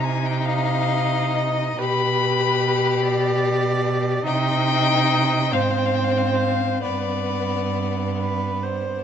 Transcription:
Already playing: C3 D#4
0.04 G#5
0.26 G5
0.46 D#5 F5
1.34 D#5
1.79 B2 G4 B4 B5
3.02 D5
4.25 C3 D#4 D#5 G5
5.52 G#2 C4 C5 F5
5.61 G5
5.71 F5
5.78 G5
5.86 F5
5.94 G5
6.04 F5
6.11 G5
6.18 F5
6.27 G5
6.35 F5
6.82 G2 B3 B4 D5
8.19 B4
8.63 C5

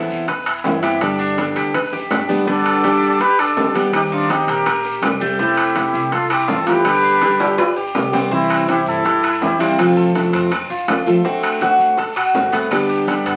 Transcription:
Already playing: E3 B3 C4 E4 A4
0.10 E2, short guiro
0.28 B4, muted steel-string acoustic guitar stroke, high bongo, high timbale, long guiro
0.46 E4, high timbale
0.64 G2 E3 B3 C4 E4, high bongo, low bongo, low timbale, short guiro
0.83 B3 C4 E4 G4, high timbale, short guiro
1.01 D3 G3 B3 D4 G4, high bongo, high timbale, long guiro
1.19 D4, high bongo
1.38 D3 G3 B3 D4 G4, high bongo, high timbale, low timbale, short guiro
1.56 D2 G4, high bongo, high timbale, short guiro
1.74 B4, muted steel-string acoustic guitar stroke, high bongo, high timbale, long guiro
1.93 G4, high bongo
2.10 G1 G3 B3 D4 G4, low bongo, high timbale, low timbale, short guiro
2.29 G3 B3 D4 G4, low bongo, short guiro
2.47 D3 G3 B3 D4 G4 A4, high bongo, long guiro
2.66 high timbale, claves
2.83 D3 G3 B3 G4, high bongo, high timbale, low timbale, short guiro
3.02 D2, short guiro
3.20 G4 B4, muted steel-string acoustic guitar stroke, high bongo, high timbale, long guiro
3.38 D4 A4, high timbale, claves
3.56 D#2 D3 G3 B3 G4, high bongo, low bongo, low timbale, short guiro
3.74 G3 B3 G4, high timbale, short guiro
3.92 D#3 G3 C4 D#4 G4, high bongo, high timbale, long guiro, claves
4.12 D4 D#4 F4, high bongo
4.29 D#3 G3 C4 D#4 G4, high bongo, high timbale, low timbale, short guiro
4.47 A#1 G4 A#4, high bongo, high timbale, short guiro
4.66 A#4, muted steel-string acoustic guitar stroke, high bongo, high timbale, long guiro, claves
4.85 G4, high bongo
5.02 F1 D#3 G3 C4 G4, high bongo, low bongo, high timbale, low timbale, short guiro, claves
5.20 G3 A3 C4 G4, short guiro
5.39 C3 A3 C4 E4 G4, high bongo, long guiro
5.57 high timbale, claves
5.75 C3 A3 C4, high bongo, high timbale, low timbale, short guiro
5.93 C2, short guiro
6.11 F4 A4, muted steel-string acoustic guitar stroke, high bongo, high timbale, long guiro
6.29 C4 E4 G4, high timbale, claves
6.48 G1 E3 A3 C4 F4 A4, high bongo, low bongo, low timbale, short guiro
6.66 E3 A3 C4 F4 G4 B4, high timbale, short guiro
6.85 D3 G3 B3 G4, high bongo, high timbale, long guiro, claves
7.03 D4, high bongo
7.21 D3 G3 B3 G4, high bongo, high timbale, low timbale, short guiro
7.40 D2 G4, high bongo, high timbale, short guiro
7.58 B4, muted steel-string acoustic guitar stroke, high bongo, high timbale, long guiro, claves
7.76 G4, high bongo
7.95 C2 D3 G3 B3 G4, high bongo, low bongo, low timbale, short guiro, claves
8.12 G3 B3 C4 G4, low timbale, short guiro
8.30 C3 E3 G3 C4 E4, high bongo, long guiro
8.50 high timbale, claves
8.68 C3 E3 G3 C4 E4 G4, high bongo, high timbale, low timbale, short guiro
8.86 G2 E4 A4, short guiro
9.04 G4, muted steel-string acoustic guitar stroke, high bongo, high timbale, long guiro
9.23 E4, high timbale, claves
9.41 F2 E3 G3 C4 E4 G4, high bongo, low bongo, low timbale, short guiro
9.59 E3 G3 C4 E4 F4, high timbale, short guiro
9.78 C3 F3 A3 C4 F4, high bongo, high timbale, long guiro, claves
9.97 A4
10.15 C3 F3 A3 C4 F4, high bongo, high timbale, low timbale, short guiro
10.33 F2 C4, high bongo, high timbale, short guiro
10.52 muted steel-string acoustic guitar stroke, high bongo, high timbale, long guiro, claves
10.70 E2 F4, high bongo
10.88 D2 F3 A3 C4 F4, high bongo, low bongo, high timbale, low timbale, short guiro, claves
11.06 F3 A3 C4 F4 A4, short guiro
11.23 D3 A3 C4 F#4, high bongo, long guiro
11.43 high timbale, claves
11.61 D3 A3 C4 F#4, high bongo, high timbale, low timbale, short guiro
11.79 D2, short guiro
11.97 A4, muted steel-string acoustic guitar stroke, high bongo, high timbale, long guiro
12.16 F#4, high timbale, claves
12.34 G1 D3 A3 C4 F#4, high bongo, low bongo, low timbale, short guiro
12.52 A3 B3 C4 F#4, high timbale, short guiro
12.71 D3 G3 B3 D4 G4, high bongo, high timbale, long guiro, claves
12.89 G4, high bongo
13.07 D3 G3 B3 D4 G4, high bongo, high timbale, low timbale, short guiro
13.25 G2 B3, high timbale, short guiro

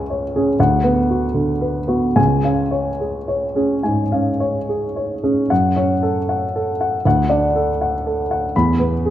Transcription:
Already playing: C#2 C#4 G#4 C#5 F5 G#5
0.10 C#5
0.36 C#4 G#4
0.60 D2 F#5
0.84 B3 B4
1.10 F#4
1.34 D3
1.61 B4
1.88 B3 F#4
2.16 C#2 G#5
2.43 C#4 F5
2.71 C#5
3.01 G#4
3.28 C#5
3.56 C#4 G#4
3.83 G#2 G#5
4.12 C#4 F5
4.40 C#5
4.69 G#4
4.96 C#5
5.23 C#4 G#4
5.50 F#2 F#5
5.76 C#4 C#5
6.03 A4
6.29 F#5
6.56 A4
6.81 F#5
7.05 D2 F#5
7.29 D4 D5
7.56 A4
7.81 F#5
8.07 A4
8.31 F#5
8.56 E2 B5
8.79 B3 B4
9.06 G#4

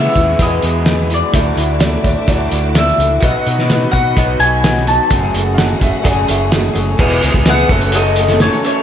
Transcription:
Already playing: C#3 E3 G#3 B3 E4 B4 E5 C#6
0.15 D#2 B3 E4, kick, closed hi-hat
0.20 G#3
0.39 E2 B2 E3 G#3 B3 E4 G#4 D#5 B5, kick, closed hi-hat
0.62 E2 E3 G#3 B3 E4, closed hi-hat
0.86 E3 G#3 B3 E4, snare, closed hi-hat
1.09 E3 G#3 B3 E4, closed hi-hat
1.14 D5
1.33 D2 D3 F#3 A3 D4 E4 F#4 E5 D6, kick, closed hi-hat
1.57 D2 D4 E4, closed hi-hat
1.61 A3
1.80 F#3 A3 D4 E4 D5, snare, closed hi-hat
2.01 D2 E4 C#5, kick, closed hi-hat
2.05 A3 D4 D5
2.27 D2 D3 F#3 A3 D4 E4 F#4 D5, kick, closed hi-hat
2.51 D2 A3 D4 E4, closed hi-hat
2.75 F#3 A3 D4 E4 E5, snare, closed hi-hat
2.88 snare
2.98 C#2 A3 D4 E4, closed hi-hat
3.20 B1 B2 F#3 B3 D#4 F#4 B4 D#5 F#5 B5, kick, closed hi-hat
3.46 B2 B3 D#4 F#4, closed hi-hat
3.59 snare
3.69 F#3 B3 D#4 F#4 B4 D#5, snare, closed hi-hat
3.92 B2 B3 D#4 F#4 F#5, kick, closed hi-hat
4.16 B1 B2 F#3 B3 D#4 F#4 B4 D#5, kick, closed hi-hat
4.39 B1 D#4 F#4 G#5, closed hi-hat
4.43 B3
4.63 F#3 B3 D#4 F#4 B4 D#5, snare, closed hi-hat
4.76 snare
4.87 B3 D#4 F#4 A5, closed hi-hat
5.10 F#1 F#2 C#3 F#3 A3 C#4 F#4 G#4 F#5, kick, closed hi-hat
5.34 F#1 F#3 A3 C#4 G#4, closed hi-hat
5.54 F#3 F#4 F5, closed hi-hat
5.58 A3 C#4 G#4 D#5 F#5, snare
5.80 F#1 F#3 A3 C#4 G#4 E5, kick, closed hi-hat
6.03 F#1 F#2 C#3 F#3 A3 C#4 F#4 G#4 D5 F#5, kick, closed hi-hat
6.27 F#1 F#3 A3 C#4 G#4 E5, closed hi-hat
6.50 F#3 A3 C#4 F#4 G#4 D#5, snare, closed hi-hat
6.73 F#1 F#3 A3 C#4 G#4, closed hi-hat
6.97 E1 E2 B2 E3 G#3 B3 E4 G#4 B4 E5 B5, kick, crash
7.11 closed hi-hat
7.21 C#2 E3 G#3 B3 E4 G#4, closed hi-hat
7.34 C#2, kick, closed hi-hat
7.45 E2 B2 E3 G#3 B3 E4 G#4 B4 E5, snare, closed hi-hat
7.49 F#5
7.58 closed hi-hat
7.68 F#1 F#3 A3 C#4 F#4 A4 F#5 C#6, kick, closed hi-hat
7.72 F#2 C#3 C#5
7.81 closed hi-hat
7.92 F#2 C#3 F#3 A3 C#4 A4 D#5, closed hi-hat
8.16 F#3 A3 C#4 A4, closed hi-hat
8.28 snare, closed hi-hat
8.40 F#2 C#3 F#3 A3 C#4 F#4 A4 C#5, snare, closed hi-hat
8.52 closed hi-hat
8.64 F#3 A3 C#4 A4 C#5, closed hi-hat

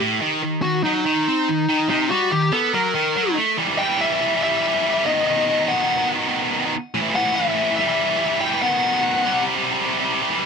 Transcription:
0.00 A2
0.22 D#3
0.44 D#3
0.62 D#3 F#4
0.83 F#3 D#4
1.06 D#3
1.28 C4
1.48 D#3
1.69 D#3
1.90 C3 D#4
2.11 G3 F#4
2.32 D#3 G4
2.52 B3 A4
2.74 F#3 A#4
2.95 D#3
3.17 F#3
3.37 A3
3.58 E3 G3
3.67 E3 G3
3.74 E3 G3
3.79 E3 G3 G5
3.89 E3 G3
3.97 E3 G3 E5
4.05 E3 G3
4.12 E3 G3
4.20 E3 G3
4.28 E3 G3
4.36 E3 G3
4.43 E3 G3 E5
4.51 E3 G3
4.60 E3 G3
4.66 E3 G3
4.74 E3 G3
4.82 E3 G3
4.90 E3 G3
4.98 E3 G3
5.06 B2 D#3 D#5
5.13 B2 D#3
5.22 B2 D#3
5.27 B2 D#3 D#5
5.36 B2 D#3
5.45 B2 D#3
5.51 B2 D#3
5.59 B2 D#3
5.66 B2 D#3 F#5
5.74 B2 D#3
5.82 B2 D#3
5.90 B2 D#3
5.97 B2 D#3
6.05 B2 D#3
6.13 B2 D#3
6.20 B2 D#3
6.28 B2 D#3
6.36 B2 D#3
6.43 B2 D#3
6.51 B2 D#3
6.59 B2 D#3
6.66 B2 D#3
6.94 A2 E3
7.02 A2 E3
7.10 A2 E3
7.15 A2 E3 F#5
7.25 A2 E3
7.32 A2 E3 E5
7.40 A2 E3
7.47 A2 E3
7.55 A2 E3
7.63 A2 E3
7.71 A2 E3
7.77 E3 G3 E5
7.87 E3 G3
7.94 E3 G3
8.02 E3 G3
8.09 E3 G3
8.17 E3 G3
8.24 E3 G3
8.32 E3 G3
8.40 E3 G3 G5
8.47 E3 G3
8.54 E3 G3
8.62 B2 D#3 F#5
8.70 B2 D#3
8.78 B2 D#3
8.86 B2 D#3
8.93 B2 D#3
9.01 B2 D#3
9.10 B2 D#3
9.18 B2 D#3
9.25 C3 G3
9.32 C3 G3
9.41 C3 G3
9.47 C3 G3
9.55 C3 G3
9.63 C3 G3
9.71 C3 G3
9.78 C3 G3
9.86 C3 G3
9.94 C3
9.98 C3 G3
10.04 G3
10.09 C3
10.13 C3 G3
10.22 C3 G3
10.30 E3 G3
10.37 E3 G3

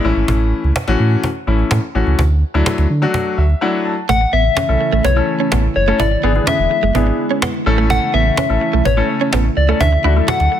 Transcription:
0.04 A1 E3 A3 C#4 E4
0.16 G#1, cajon slap
0.28 A1, cajon bass
0.40 cajon slap
0.64 C#2, cajon slap
0.76 cajon bass, cajon slap
0.88 A1 E3 A3 C#4 F#4, cajon slap
1.00 A2
1.12 cajon slap
1.24 cajon bass
1.35 cajon slap
1.47 A1 E3 A3 C#4 E4
1.59 cajon slap
1.71 A2, cajon bass, cajon slap
1.83 cajon slap
1.95 A1 E3 A3 C#4 F#4
2.07 C#2, cajon slap
2.19 D2, cajon bass
2.30 cajon slap
2.54 D2 F#3 A3 D4 E4, cajon slap
2.66 cajon bass, cajon slap
2.78 D2, cajon slap
2.90 D3
3.02 F#3 A3 D4 F#4, cajon slap
3.14 cajon bass
3.26 cajon slap
3.38 D2 E5
3.50 cajon slap
3.61 F#3 A3 D4 E4 F#5
3.85 A5
4.09 A1 C#3 E3 A3 E4 F#5, cajon bass
4.21 muted clean electric guitar stroke, cajon slap
4.33 A1 B3 E5
4.45 cajon slap
4.57 C#4, cajon bass, cajon slap
4.68 B1 A3 C#4 E4 A4, cajon slap
4.81 muted clean electric guitar stroke
4.92 A1 A3, cajon slap
5.04 B1 B3 C#5, cajon bass
5.16 A3 C#4 E4 A4, muted clean electric guitar stroke
5.40 C#4, cajon slap
5.52 A1 B3, cajon bass, cajon slap
5.64 cajon slap
5.76 F#1 C#5, muted clean electric guitar stroke
5.87 A3 C#4 E4 A4, cajon slap
6.00 G#1 D3 G#3 B3 E4 D5, cajon bass
6.11 muted clean electric guitar stroke, cajon slap
6.23 G#1 B3 D4 E4 G#4
6.35 B3 D4 E4 G#4, cajon slap
6.47 C#4 E5, cajon bass, cajon slap
6.59 E1, cajon slap
6.71 muted clean electric guitar stroke
6.83 F#1 G#3, cajon slap
6.95 G#1 B3 D4 E4 G#4, cajon bass
7.07 muted clean electric guitar stroke, cajon slap
7.31 C#4, cajon slap
7.42 B3, cajon bass, cajon slap
7.54 cajon slap
7.66 A1 C#3 E3 A3 C#4 E4 A4, muted clean electric guitar stroke
7.78 A3, cajon slap
7.90 A3 F#5, cajon bass
8.02 muted clean electric guitar stroke
8.14 A1 B3 E5
8.26 cajon slap
8.37 C#4, cajon bass, cajon slap
8.49 A1 A3 C#4 E4 A4, cajon slap
8.61 muted clean electric guitar stroke
8.73 B1 A3, cajon slap
8.85 A1 B3 C#5, cajon bass
8.97 A3 C#4 E4 A4, muted clean electric guitar stroke
9.21 C#4, cajon slap
9.33 A1 B3, cajon bass, cajon slap
9.45 cajon slap
9.57 C#2 D5, muted clean electric guitar stroke
9.68 A3 C#4 E4 A4, cajon slap
9.80 D2 D3 F#3 D4 E4 E5, cajon bass
9.92 muted clean electric guitar stroke, cajon slap
10.04 D2 A3 D4 E4 F#4
10.16 A3 D4 E4 A4, cajon slap
10.28 F#4 F#5, cajon bass, cajon slap
10.40 D2, cajon slap
10.52 muted clean electric guitar stroke

